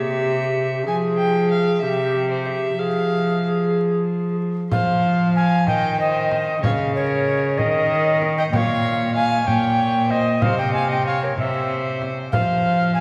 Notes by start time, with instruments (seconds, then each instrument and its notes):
Already playing: cello C3, recorder G4, violin E5
0.85 cello F3, recorder G#4, violin G#5
1.18 violin G5
1.51 violin F5
1.81 cello C3, recorder G4, violin E5
2.31 violin C5
2.46 violin E5
2.78 cello F3, recorder G#4, violin F5
4.71 cello F3, violin C5, recorder F5, frame drum
5.36 violin F5, recorder G#5
5.67 cello D#3, violin D#5, recorder G5, frame drum
6.00 violin C5, recorder D#5
6.32 frame drum
6.62 cello C#3, violin C#5, recorder F5, frame drum
6.96 violin A#4, recorder C#5
7.58 cello D#3, violin A#4, recorder D#5, frame drum
8.22 frame drum
8.38 violin D#5, recorder G5
8.52 cello A#2, violin C#5, recorder F5 G5, frame drum
9.15 violin F5, recorder G#5
9.46 cello A#2, violin C#5, recorder G5, frame drum
10.10 violin C5, recorder D#5, frame drum
10.42 cello C3, violin C5, recorder F5, frame drum
10.58 violin D#5, recorder G5
10.74 violin F5, recorder G#5
10.90 violin D#5, recorder G5
11.06 violin C#5, recorder F5
11.23 violin A#4, recorder C#5
11.37 cello C3, violin C5, recorder E5, frame drum
12.02 frame drum
12.32 cello F3, violin C5, recorder F5, frame drum
12.95 violin F5, recorder G#5